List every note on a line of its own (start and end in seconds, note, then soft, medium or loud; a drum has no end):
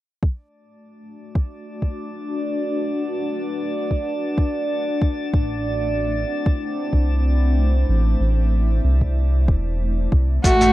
0.23 10.73 A3 medium
0.23 10.46 D4 medium
0.23 10.46 D5 medium
0.23 kick loud
0.39 6.40 F#4 medium
0.78 6.63 D4 medium
1.35 kick loud
1.71 5.33 B4 medium
1.82 kick medium
2.12 7.39 F#5 medium
3.91 kick medium
4.38 kick loud
5.02 kick loud
5.34 6.25 A1 medium
5.34 kick loud
5.48 10.44 C4 medium
5.64 10.73 E4 medium
5.72 10.44 C5 medium
6.46 kick loud
6.93 7.85 C2 medium
6.93 kick medium
7.24 10.73 E5 medium
7.89 8.16 A1 loud
8.20 8.80 A1 medium
8.84 9.48 C2 medium
9.01 kick medium
9.48 10.08 E1 loud
9.48 kick loud
10.12 10.39 C2 medium
10.12 kick loud
10.44 10.73 A1 medium
10.44 10.59 A3 medium
10.44 10.73 F#4 medium
10.44 kick loud
10.44 closed hi-hat medium
10.44 shaker soft
10.61 10.70 A3 medium
10.61 closed hi-hat soft
10.61 darbuka ka soft
10.61 darbuka dum medium
10.61 shaker soft